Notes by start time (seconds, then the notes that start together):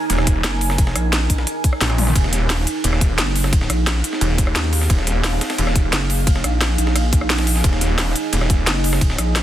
Already playing: D#4 A#4 G#5
0.10 D#1, closed hi-hat, ride
0.18 cross-stick, snare
0.27 kick, closed hi-hat, ride
0.44 F#1, snare, closed hi-hat, ride
0.53 snare
0.61 open hi-hat, ride
0.70 cross-stick, snare
0.78 kick, closed hi-hat, ride
0.87 snare
0.95 A#1, cross-stick, closed hi-hat, ride
1.13 snare, closed hi-hat, ride
1.30 A#1, kick, closed hi-hat, ride
1.38 snare
1.47 closed hi-hat, ride
1.64 kick, closed hi-hat, ride
1.73 cross-stick
1.81 A#1, snare, closed hi-hat, open hi-hat
1.90 cross-stick, snare, ride
1.98 open hi-hat, high tom, ride
2.07 snare, mid tom
2.16 D#1 G#4 F5, kick, closed hi-hat, ride
2.24 snare
2.33 snare, closed hi-hat, ride
2.50 snare, closed hi-hat, open hi-hat, ride
2.67 closed hi-hat, ride
2.84 D#1, closed hi-hat, ride
2.93 cross-stick, snare
3.01 kick, closed hi-hat, ride
3.18 F#1, snare, closed hi-hat, ride
3.27 snare
3.36 open hi-hat, ride
3.44 cross-stick, snare
3.53 kick, closed hi-hat, ride
3.61 snare
3.70 A#1, cross-stick, closed hi-hat, ride
3.87 snare, closed hi-hat, ride
4.04 closed hi-hat, ride
4.13 snare
4.21 D#1, closed hi-hat, ride
4.38 kick, closed hi-hat, ride
4.47 cross-stick
4.56 D#2, snare, closed hi-hat, ride
4.64 ride
4.73 open hi-hat, ride
4.81 snare
4.90 D#1, kick, closed hi-hat, ride
4.98 snare
5.07 snare, closed hi-hat, ride
5.24 snare, closed hi-hat, open hi-hat, ride
5.41 snare, closed hi-hat, open hi-hat
5.50 snare, open hi-hat
5.58 D#1, closed hi-hat, ride
5.67 cross-stick, snare
5.76 kick, closed hi-hat, ride
5.93 F#1, snare, closed hi-hat, ride
6.01 snare
6.10 open hi-hat, ride
6.27 kick, closed hi-hat, ride
6.36 snare
6.44 A#1, cross-stick, closed hi-hat, ride
6.61 snare, closed hi-hat, ride
6.78 A#1, closed hi-hat, ride
6.87 snare
6.96 cross-stick, closed hi-hat, ride
7.13 kick, closed hi-hat, ride
7.21 cross-stick
7.30 snare, closed hi-hat, open hi-hat, ride
7.38 snare, open hi-hat
7.47 open hi-hat, ride
7.56 snare
7.64 D#1 D#5, kick, closed hi-hat, ride
7.73 snare
7.81 snare, closed hi-hat, ride
7.98 snare, closed hi-hat, open hi-hat, ride
8.16 closed hi-hat, ride
8.33 D#1, closed hi-hat, ride
8.41 cross-stick, snare
8.50 kick, closed hi-hat, ride
8.67 F#1, snare, closed hi-hat, ride
8.75 snare
8.84 open hi-hat, ride
8.93 cross-stick, snare
9.01 kick, closed hi-hat, ride
9.10 snare
9.18 A#1, cross-stick, closed hi-hat, ride
9.36 snare, closed hi-hat, ride